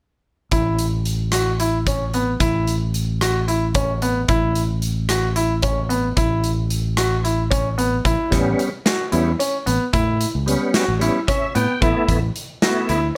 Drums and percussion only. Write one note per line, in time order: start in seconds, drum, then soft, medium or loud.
0.51 kick medium
0.51 closed hi-hat soft
0.79 closed hi-hat soft
1.05 closed hi-hat soft
1.32 cross-stick medium
1.32 closed hi-hat medium
1.60 closed hi-hat soft
1.87 kick medium
1.87 closed hi-hat medium
2.14 closed hi-hat soft
2.40 kick medium
2.40 closed hi-hat medium
2.67 closed hi-hat soft
2.94 closed hi-hat soft
3.21 cross-stick medium
3.21 closed hi-hat medium
3.48 closed hi-hat soft
3.75 kick medium
3.75 closed hi-hat medium
4.02 closed hi-hat soft
4.28 kick medium
4.28 closed hi-hat soft
4.55 closed hi-hat soft
4.82 closed hi-hat soft
5.09 cross-stick medium
5.09 closed hi-hat medium
5.36 closed hi-hat soft
5.62 kick medium
5.62 closed hi-hat medium
5.90 closed hi-hat soft
6.17 kick medium
6.17 closed hi-hat medium
6.44 closed hi-hat soft
6.70 closed hi-hat medium
6.97 cross-stick medium
6.97 closed hi-hat medium
7.25 closed hi-hat soft
7.51 kick medium
7.51 closed hi-hat medium
7.79 closed hi-hat soft
8.05 kick medium
8.05 closed hi-hat medium
8.32 kick medium
8.32 snare soft
8.32 closed hi-hat soft
8.59 closed hi-hat soft
8.86 snare medium
8.86 closed hi-hat medium
9.12 closed hi-hat soft
9.40 closed hi-hat medium
9.67 closed hi-hat medium
9.93 kick medium
9.93 closed hi-hat medium
10.21 closed hi-hat medium
10.48 closed hi-hat medium
10.74 snare medium
10.74 closed hi-hat medium
11.01 closed hi-hat soft
11.28 kick medium
11.28 closed hi-hat medium
11.55 closed hi-hat soft
11.82 kick medium
11.82 closed hi-hat medium
12.09 kick medium
12.09 closed hi-hat soft
12.36 closed hi-hat soft
12.62 snare medium
12.62 closed hi-hat medium
12.89 closed hi-hat soft